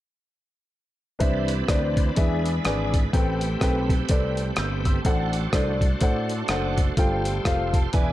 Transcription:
1.19 C2 C3 E3 C4 D4 B4 C5 E5, kick, closed hi-hat
1.48 closed hi-hat
1.68 D2 D4 B4 C5 D5, kick, cross-stick, closed hi-hat
1.97 kick, closed hi-hat
2.15 E2 E3 G#3 D4 E4 G#4 B4 E5, kick, closed hi-hat
2.45 closed hi-hat
2.64 G#1 D4 G#4 B4 D5, cross-stick, closed hi-hat
2.94 kick, closed hi-hat
3.13 A1 A2 A3 C4 G4 A4 B4 G5, kick, closed hi-hat
3.41 closed hi-hat
3.61 B1 C4 A4 B4 G5, kick, cross-stick, closed hi-hat
3.89 kick, closed hi-hat
4.09 C2 C4 A4 B4 D5, kick, closed hi-hat
4.37 closed hi-hat
4.56 G1 E6 G6, cross-stick, closed hi-hat
4.85 C6 E6, kick, closed hi-hat
5.05 A1 A2 D4 F#4 A4 C5 F#5, kick, closed hi-hat
5.33 closed hi-hat
5.53 C2 D4 A4 C5 D5, kick, cross-stick, closed hi-hat
5.81 kick, closed hi-hat
6.01 A2 D4 A4 C5 F#5, kick, closed hi-hat
6.29 closed hi-hat
6.48 F#1 D4 A4 C5 F#5, cross-stick, closed hi-hat
6.78 kick, closed hi-hat
6.97 G1 G2 F4 G4 A4 C5 G5, kick, closed hi-hat
7.25 closed hi-hat
7.45 F1 F4 A4 C5 F5, kick, cross-stick, closed hi-hat
7.74 A5, kick, closed hi-hat
7.93 E1 E3 B3 E4 G#4 B4 D5 G#5, kick, cross-stick, closed hi-hat

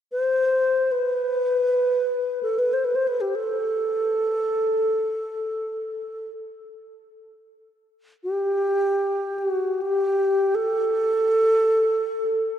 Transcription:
0.12 C5
0.92 B4
2.43 A4
2.59 B4
2.73 C5
2.85 B4
2.95 C5
3.07 B4
3.21 G4
3.35 A4
8.24 G4
9.38 F#4
9.82 G4
10.55 A4

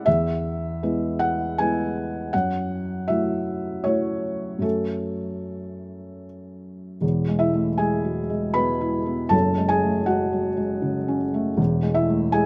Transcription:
0.06 E2 E5
0.83 G#3 B3 E4
1.19 F#5
1.58 G#3 B3 E4 G#5
2.33 F#2 F#5
3.08 F#3 A3 E4 E5
3.84 F#3 A3 E4 C#5
4.59 F#2 F#3 A3 A4
4.63 C#4
7.01 E1 E2
7.28 G#3
7.39 E4 E5
7.54 A3
7.78 G#3 G#4 G#5
8.04 F#3
8.30 G#3
8.54 B2 B4 B5
8.81 E4
9.06 B3
9.29 F#1 F#2 A4 A5
9.58 G#3
9.69 G#4 G#5
9.83 A3
10.06 G#3 F#4 F#5
10.33 F#3
10.57 G#3
10.82 C#3
11.08 C#4
11.34 A3
11.57 E1 E2
11.83 G#3
11.94 E4 E5
12.09 A3
12.32 G#3 G#4 G#5

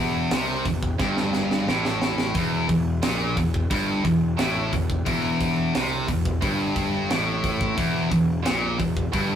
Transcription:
Already playing: E1 E2
0.31 C2 C3, snare, open hi-hat
0.65 E1 E2, kick, open hi-hat
0.83 kick
0.99 G1 G2, kick, snare
1.17 snare
1.33 snare
1.51 snare
1.66 A1 A2, snare
1.85 snare
2.02 snare
2.18 snare
2.34 E1 E2, kick, open hi-hat
2.69 E1 E2, kick, open hi-hat
3.03 A#1 A#2, snare, open hi-hat
3.35 E1 E2, kick, open hi-hat
3.54 kick
3.71 G1 G2, kick, open hi-hat
4.05 E1 E2, kick, open hi-hat
4.39 A1 A2, snare, open hi-hat
4.72 E1 E2, kick, open hi-hat
4.90 kick
5.06 E1 E2, kick, open hi-hat
5.41 kick, open hi-hat
5.73 C2 C3, snare, open hi-hat
6.08 E1 E2, kick, open hi-hat
6.25 kick
6.41 G1 G2, kick, open hi-hat
6.76 kick, open hi-hat
7.10 A1 A2, snare, open hi-hat
7.44 kick, open hi-hat
7.61 kick
7.78 E1 E2, kick, open hi-hat
8.12 E1 E2, kick, open hi-hat
8.46 A#1 A#2, snare, open hi-hat
8.79 E1 E2, kick, open hi-hat
8.97 kick
9.13 G1 G2, kick, open hi-hat

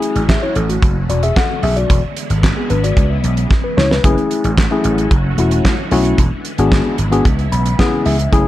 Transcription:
Already playing: E3 F#3 A3 C#4 E4 F#4 G#4
0.02 closed hi-hat
0.15 A1, closed hi-hat
0.29 G#4 E5, kick, snare, clap
0.43 E4 C#5
0.55 A1 C#4 A4, closed hi-hat
0.69 A3 F#4, closed hi-hat
0.82 F#1 D3 F#3 A3 C#4, kick, closed hi-hat
1.09 E1 F#4 D5, closed hi-hat
1.23 G#4 E5, closed hi-hat
1.36 A4 F#5, kick, snare, clap
1.63 B1 G#4 E5, open hi-hat
1.76 F#4 D5, closed hi-hat
1.89 E1 E3 G#3 B3 E4, kick, closed hi-hat
2.17 closed hi-hat
2.30 G#1, closed hi-hat
2.43 kick, snare, clap
2.57 B3 G#4
2.70 G#1 D4 B4, closed hi-hat
2.84 F#4 D5, closed hi-hat
2.97 C#2 C#3 E3, kick, closed hi-hat
3.24 B1, closed hi-hat
3.37 closed hi-hat
3.51 kick, snare
3.64 B4
3.77 C#2 E4 C#5, snare
3.91 B4, snare
4.04 F#1 F#3 A3 C#4 E4 F#4 G#4, kick, closed hi-hat
4.18 closed hi-hat
4.31 closed hi-hat
4.44 A1, closed hi-hat
4.58 kick, snare, clap
4.71 A3 C#4 E4 G#4
4.84 A1, closed hi-hat
4.98 closed hi-hat
5.11 F#1 D3, kick, closed hi-hat
5.38 E1 A3 C#4 E4 F#4, closed hi-hat
5.51 closed hi-hat
5.65 kick, snare, clap
5.91 B1 A3 C#4 E4 F#4, open hi-hat
6.05 closed hi-hat
6.18 E1 E3 G#3 B3 E4, kick, closed hi-hat
6.45 closed hi-hat
6.58 G#1 B3 D4 F#4 G#4, closed hi-hat
6.72 kick, snare, clap
6.98 G#1, closed hi-hat
7.12 B3 D4 F#4 G#4, closed hi-hat
7.25 C#2 C#3 G#3, kick, closed hi-hat
7.39 closed hi-hat
7.52 B1 B5, closed hi-hat
7.66 closed hi-hat
7.79 B3 C#4 E4 G#4 G#5, kick, snare, clap
8.06 C#2 E5, open hi-hat
8.19 closed hi-hat
8.32 F#1 F#3 A3 C#4 E4 F#4 G#4, kick, closed hi-hat

